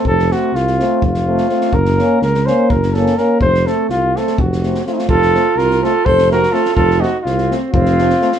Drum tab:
SD |-oo-ooo--o-ooo|-oo-ooo--oooo-|-oo-o-oo-ooooo|-oo-ooo--ooooo|
BD |o-------o-----|o-------o-----|o-------o-----|o-------o-----|

SD |-oo-ooo--ooooo|
BD |o-------o-----|